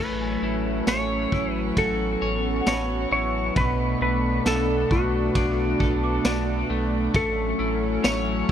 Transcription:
0.00 0.37 A1 loud
0.00 3.52 F#3 medium
0.00 1.75 A3 medium
0.00 3.59 A3 medium
0.00 3.52 C#4 medium
0.00 0.42 E4 medium
0.00 0.88 B4 medium
0.00 0.39 C#5 soft
0.00 0.87 C#5 medium
0.21 3.71 G#5 medium
0.42 0.82 A1 medium
0.42 1.31 E4 medium
0.87 1.27 A1 medium
0.87 2.21 C#5 medium
0.87 1.54 C#5 loud
0.87 snare loud
0.87 ride medium
0.87 tambourine medium
1.32 1.72 A1 medium
1.32 3.10 E4 medium
1.32 kick medium
1.54 1.80 B4 loud
1.76 2.16 A1 loud
1.76 7.10 B3 medium
1.76 2.67 F#4 medium
1.76 2.70 A4 medium
1.76 kick medium
1.76 ride medium
2.22 2.61 A1 loud
2.22 3.65 C#5 medium
2.61 3.97 F#5 medium
2.66 3.06 A1 loud
2.66 4.46 F#4 medium
2.66 3.11 C#5 loud
2.66 3.99 A5 soft
2.66 snare loud
2.66 ride medium
2.66 tambourine medium
2.71 4.02 B5 medium
3.11 3.51 A1 medium
3.11 3.65 E4 medium
3.11 3.57 C#5 loud
3.56 3.96 B1 loud
3.56 7.14 B2 medium
3.56 8.52 A3 medium
3.56 7.11 D4 medium
3.56 3.99 B4 medium
3.56 kick loud
3.56 ride medium
3.60 7.10 C#6 medium
4.01 4.40 B1 loud
4.01 4.90 A3 medium
4.01 4.43 B4 medium
4.45 4.85 B1 medium
4.45 5.80 A4 medium
4.45 4.93 A4 medium
4.45 snare loud
4.45 ride medium
4.45 tambourine medium
4.91 5.30 B1 medium
4.91 6.70 A3 medium
4.91 6.66 F#4 medium
4.91 kick medium
5.35 5.75 B1 medium
5.35 6.24 D4 medium
5.35 kick medium
5.35 ride medium
5.80 6.20 B1 loud
5.80 8.52 A4 medium
5.80 kick medium
6.04 7.55 D6 medium
6.25 6.64 B1 loud
6.25 7.23 D4 medium
6.25 snare loud
6.25 ride medium
6.25 tambourine medium
6.70 7.09 B1 loud
6.70 7.14 A3 medium
7.14 7.54 A1 loud
7.14 8.52 F#3 medium
7.14 8.52 A3 medium
7.14 8.52 C#4 medium
7.14 8.07 A4 medium
7.14 kick loud
7.14 ride medium
7.59 7.99 A1 loud
7.59 8.48 E4 medium
8.04 8.44 A1 medium
8.04 8.52 C#5 medium
8.04 snare loud
8.04 ride medium
8.04 tambourine medium

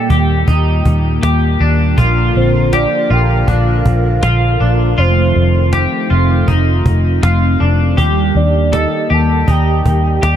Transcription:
0.00 1.94 A#2 medium
0.00 1.94 G3 medium
0.00 4.94 A#3 medium
0.00 1.94 G4 medium
0.00 1.23 G5 medium
0.10 0.43 D#2 medium
0.10 0.48 G4 medium
0.10 cajon bass medium
0.48 0.81 D#2 loud
0.48 1.23 D#4 medium
0.48 cajon bass medium
0.85 1.19 D#2 medium
0.85 cajon bass medium
1.23 1.56 D#2 medium
1.23 1.60 G4 medium
1.23 cajon slap loud
1.60 1.93 D#2 medium
1.60 1.98 D4 medium
1.60 cajon slap soft
1.98 2.31 A#1 loud
1.98 4.95 D3 medium
1.98 7.94 F3 medium
1.98 2.72 F4 medium
1.98 7.94 F4 medium
1.98 4.95 A#4 medium
1.98 cajon bass loud
2.35 2.85 A#1 medium
2.35 2.75 C5 medium
2.35 cajon slap soft
2.73 3.10 G4 medium
2.73 3.12 D5 medium
2.73 cajon slap medium
3.10 3.43 A#1 medium
3.10 3.48 F4 medium
3.10 3.50 G5 loud
3.10 cajon slap soft
3.48 3.81 A#1 medium
3.48 4.23 D4 medium
3.48 4.23 F5 loud
3.48 cajon bass medium
3.86 4.19 A#1 medium
3.86 cajon bass medium
4.23 4.56 A#1 loud
4.23 4.60 F4 medium
4.23 5.00 F5 loud
4.23 cajon slap loud
4.60 4.94 A#1 medium
4.60 4.98 D4 medium
4.60 cajon slap soft
4.98 5.31 F1 loud
4.98 7.96 D#3 medium
4.98 7.96 A3 medium
4.98 7.95 C4 medium
4.98 5.72 F4 medium
4.98 5.73 C5 medium
4.98 cajon slap soft
5.36 5.85 F1 medium
5.36 cajon slap soft
5.73 6.10 G4 medium
5.73 cajon slap medium
6.10 6.44 F1 medium
6.10 6.48 F4 medium
6.10 cajon slap soft
6.48 6.81 F1 medium
6.48 7.23 D#4 medium
6.48 cajon bass medium
6.86 7.19 F1 medium
6.86 cajon bass medium
7.23 7.56 F1 loud
7.23 7.60 F4 medium
7.23 cajon slap loud
7.60 7.94 F1 medium
7.60 7.98 D4 medium
7.60 cajon slap soft
7.97 8.31 D#2 medium
7.97 10.36 D#3 medium
7.97 10.36 G3 medium
7.97 10.36 A#3 medium
7.97 8.72 G4 medium
7.97 10.36 G4 medium
7.97 cajon bass medium
8.35 8.85 D#2 medium
8.35 8.76 D5 medium
8.35 cajon slap soft
8.73 9.10 A4 medium
8.73 9.13 D#5 medium
8.73 cajon slap medium
9.10 9.44 D#2 medium
9.10 9.48 G4 medium
9.10 9.52 A5 loud
9.10 cajon slap soft
9.48 9.81 D#2 medium
9.48 10.23 D#4 medium
9.48 10.24 G5 loud
9.48 cajon bass medium
9.86 10.19 D#2 medium
9.86 cajon bass medium
10.22 10.36 D#2 loud
10.22 10.36 G4 medium
10.22 10.36 G5 loud
10.22 cajon slap loud

